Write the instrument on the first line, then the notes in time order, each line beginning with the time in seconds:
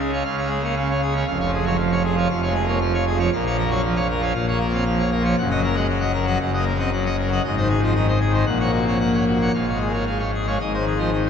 pipe organ
Already playing: C#2 C#3
0.00 G#4
0.09 C#4
0.13 C#5 F5
0.25 C#2 C#3 F5
0.38 C#5 F5
0.43 G#3
0.49 G#4
0.59 A#3
0.64 C#5 F5
0.77 C#4 F5
0.90 C#5 F5
1.02 G#4
1.12 C#4
1.17 C#5 F5
1.27 F1 F2 F5
1.40 C#5 F5
1.45 F3
1.54 G#4
1.62 F#3 C#5 F5
1.79 F3 F5
1.92 C#5 F5
2.04 G#4
2.13 F3
2.18 C#5 F5
2.29 F1 F2 F5
2.42 G#3 C#5 F5
2.54 G#4
2.63 A#3
2.68 C#5 F5
2.81 F3 F5
2.94 C#5 F5
3.07 G#4
3.15 F3 C#5 F5
3.33 A#1 A#2 F5
3.46 F3 C#5 F5
3.59 A#4
3.67 F#3
3.71 C#5 F5
3.85 F3 F5
3.96 C#5 F5
4.10 A#4
4.18 F3 C#5 F5
4.35 A#1 A#2 F5
4.48 A#3 C#5 F5
4.61 A#4
4.69 C4 F5
4.73 C#5
4.86 F3 F5
4.99 C#5 F5
5.11 A#4
5.21 F3 C#5
5.25 F5
5.38 F#1 F#2 F#5
5.51 D#5 F#5
5.55 F#3
5.64 A#4
5.72 G#3 D#5 F#5
5.89 F#3 F#5
6.01 D#5 F#5
6.14 A#4
6.23 F#3
6.27 D#5 F#5
6.39 F#1 F#2 F#5
6.54 D#5 F#5
6.58 A#3
6.67 A#4
6.76 C4 D#5 F#5
6.93 F#3 F#5
7.06 D#5 F#5
7.19 A#4
7.27 F#3
7.32 D#5 F#5
7.44 G#1 G#2 D#5
7.57 D#3 C5 D#5
7.69 G#4
7.79 F3
7.83 C5 D#5
7.96 D#3 D#5
8.08 C5 D#5
8.20 G#4
8.28 D#3
8.33 C5 D#5
8.46 A#1 A#2 F#5
8.60 C#5 F#5
8.65 A#3
8.73 F#4
8.82 C4
8.87 C#5 F#5
9.00 A#3 F#5
9.14 C#5 F#5
9.26 F#4
9.37 A#3
9.42 C#5 F#5
9.54 G#1 G#2 F5
9.68 C#5 F5
9.73 G#3
9.81 G#4
9.89 A#3
9.93 C#5 F5
10.06 G#3 F5
10.19 C#5 F5
10.34 G#4
10.43 G#3
10.47 C#5 F5
10.60 G#1 G#2 D#5
10.74 C5 D#5
10.79 D#3
10.87 G#4
10.96 F3 C5 D#5
11.13 D#3 D#5
11.26 C5 D#5